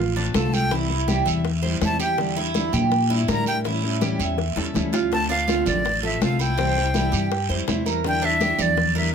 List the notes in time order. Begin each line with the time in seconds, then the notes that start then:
Already playing: A1 F4
0.00 muted nylon-string guitar stroke
0.16 A3 C4 D4 F4, high conga
0.34 C2 D3 A3 C4 F4 A4 A5, high bongo, low bongo, high conga, short guiro
0.53 A3 C4 F4 G5, high bongo, high conga, short guiro
0.71 C3 E3 G3 C4 E4, high bongo, high conga, long guiro
0.90 G3 C4 E4, high bongo, high conga
1.08 C3 E3 G3 C4 E4 G4, high bongo, high conga, short guiro
1.26 E2 E5, high conga, short guiro
1.44 muted nylon-string guitar stroke, high bongo, high conga, long guiro
1.62 G3 C4 E4 C5, high bongo, high conga
1.81 E2 C3 E3 G3 C4 E4, high bongo, low bongo, high conga, short guiro
1.85 A5
1.99 G3 C4 E4 G4 G5, high bongo, high conga, short guiro
2.17 D3 G3 D4 E4, high bongo, high conga, long guiro
2.36 G3 D4 E4, high bongo, high conga
2.54 D3 G3 D4 E4, high bongo, high conga, short guiro
2.73 A#2 G4, high bongo, low conga, short guiro
2.92 muted nylon-string guitar stroke, high bongo, high conga, long guiro
3.09 G3 D4 E4, high conga
3.28 D3 G3 D4 E4 A#4 A#5, high bongo, low bongo, high conga, short guiro
3.46 G3 D4 E4 G5, high bongo, short guiro
3.64 E3 G3 C#4 E4, high bongo, long guiro
3.83 G3 C#4 E4, high bongo, high conga
4.01 E3 G3 C#4 E4 G4, high bongo, high conga, short guiro
4.19 E2 E5, high conga, short guiro
4.38 muted nylon-string guitar stroke, high bongo, high conga, long guiro
4.56 E2 G3 C#4 E4 A4, low bongo, high conga
4.73 D2 E3 G3 C#4 E4, low bongo, high conga, short guiro
4.93 G3 C#4 E4 F4, low bongo, high conga, short guiro
5.11 D3 A3 C4 F4 A5, high bongo, high conga, long guiro
5.29 A3 C4 D4 F4 F5, high bongo, high conga
5.48 D3 A3 C4 F4, high bongo, high conga, short guiro
5.66 A1 D5, high bongo, low conga, short guiro
5.85 muted nylon-string guitar stroke, high bongo, high conga, long guiro
6.03 A3 C4 F4 A4 E5, high conga
6.20 C2 D3 A3 C4 F4 F5, high bongo, low bongo, high conga, short guiro
6.39 A3 C4 E4 F4 G5, high bongo, short guiro
6.58 C3 E3 G3 C4 E4, high bongo, high conga, long guiro
6.76 G3 C4 E4, high bongo, high conga
6.94 C3 E3 G3 C4 E4, high bongo, high conga, short guiro
7.12 G2 G4, high conga, short guiro
7.31 muted nylon-string guitar stroke, high bongo, high conga, long guiro
7.49 F2 G3 C4 E4 C5, high bongo, high conga
7.67 E2 C3 E3 G3 C4 E4, high bongo, low bongo, high conga, short guiro
7.85 G3 C4 E4 A#4, high bongo, high conga, short guiro
8.04 D3 G3 D4 E4 G5, high bongo, high conga, long guiro
8.22 G3 D4 E4 E5, high bongo, high conga
8.40 D3 G3 D4 E4 G4, high bongo, high conga, short guiro
8.58 E2 D5, high bongo, low conga, short guiro
8.77 muted nylon-string guitar stroke, high bongo, high conga, low conga, long guiro
8.95 G3 D4 E4 A#4 E5, high conga